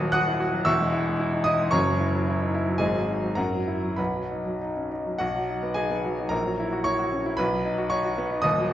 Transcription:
Already playing: D#1 D#2 F#4 D#5 B5 D#6
0.00 F#3
0.12 F#4 F#5 D#6 F#6
0.28 E4
0.40 F#4
0.53 F#3
0.65 E1 E2 E5 C#6 E6
0.80 G#3
0.92 E4
1.05 G#3
1.20 E4
1.33 D#4
1.44 E4 D#5 D#6
1.59 G#3
1.71 F#1 F#2 C#5 A#5 C#6
1.87 F#3
2.00 E4
2.14 F#3
2.28 E4
2.41 D#4
2.54 E4
2.68 F#3
2.78 G#1 G#2 G#4 D#5 G#5
2.94 F#3
3.08 D#4
3.22 F#3
3.35 F#2 A#4 F#5 A#5
3.53 F#3
3.68 E4
3.83 F#3
3.96 B1 B4 F#5 B5
4.15 F#3
4.31 D#4
4.46 F#3
4.62 D#4
4.77 C#4
4.91 D#4
5.06 F#3
5.18 B1 F#4 F#5
5.35 F#3
5.49 D#4
5.63 B3
5.74 D#4 G#4 G#5
5.91 B3
6.04 F#3
6.18 D#4
6.29 A#1 A#4 A#5
6.45 F#3
6.60 E4
6.73 F#4
6.84 E4 C#5 C#6
6.99 F#4
7.13 C#4
7.26 E4
7.37 B1 B4 B5
7.53 F#3
7.65 D#4
7.78 F#4
7.90 D#4 C#5 C#6
8.04 F#4
8.18 B3
8.31 D#4
8.42 D#1 D#2 D#5 D#6
8.58 F#3

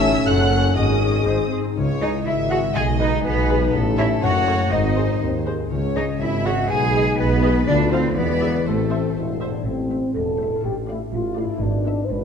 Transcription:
Already playing: A1 A2 C#4 A4 E5 E6
0.10 E4 A4
0.26 F#1 F#2 C#4 A4 F#5 F#6
0.44 C#4
0.60 D#4 A4
0.76 G#1 G#2 C#4 G#4 D#5 D#6
0.93 C#4
1.10 D#4 G#4
1.26 G#1 G#2 C4 G#4 C5
1.43 C4
1.51 G#4
1.60 D#4 G#4
1.76 C#2 C#3 G#3 E4 C#5
1.93 G#3
2.01 D#4 G#4 D#5
2.10 G#4
2.26 G#1 E4 E5
2.43 G#4
2.49 F#4 G#4 F#5
2.59 E4
2.74 B1 B2 D#4 G#4 D#5 G#5
2.92 G#3
2.99 D#4 G#4 B4 D#5
3.08 G#4
3.23 B1 B3 G#4 B4 D#5
3.41 G#4
3.50 G#4 B4
3.58 D#4
3.73 A1 A2 A3 C#4 A4
3.90 A3
3.97 E4 A4 C#5 E5
4.07 C#4 C#5
4.22 F#1 F#2 F#4 C#5 F#5
4.39 A3
4.47 A4 C#5
4.56 C#5
4.71 G#1 G#2 G#3 C4 D#4 C5 D#5
4.88 G#3
4.96 G#4 C5
5.04 G#4
5.20 D#2 C4 C5
5.38 G#4
5.46 G#3 G#4 C5
5.54 C4
5.70 C#2 C#3 G#3 C#4 C#5
5.87 C#4
5.95 D#4 G#4 C#5 D#5
6.03 G#4
6.19 G#1 E4 E5 G#5
6.36 C#5
6.45 F#4 G#4 C#5 F#5
6.52 G#4
6.68 B1 B2 D#4 G#4 B4 G#5
6.85 G#3
6.95 G#4 D#5
7.18 B1 B3 B4 D#5
7.35 G#4
7.43 G#4 D#5
7.50 D#4
7.66 D2 D3 A3 D4 F4 D5
7.83 B3
7.92 C4 A4 C5 F5
8.00 F4 A4
8.16 E1 E2 E3 G#3 B3 E4 B4 D5
8.33 E4
8.41 G#4 E5
8.50 E4 G#4
8.66 A1 A2 A3 C4 A4 C5
8.83 C4
8.90 C5 E5
8.99 A4
9.15 E1 E4 E5
9.33 C5
9.40 D4 C5 E5
9.48 A2 A4
9.53 C4
9.57 E4
9.62 C4 A4
9.66 A1 A2
9.91 A3 C5 E5
10.14 E1 E2 A4
10.39 A3 C5 E5
10.46 A2
10.51 D4
10.55 F4
10.60 A1 G4 A4
10.65 A2
10.89 A3 E4 D5 F5
11.13 A1 A2 F4
11.37 A3 E4 D5 F5
11.44 G#2
11.49 D4
11.53 E4
11.58 D4 B4
11.62 G#1 G#2
11.86 B3 E5
12.04 C5
12.10 G#1 G#2 B4

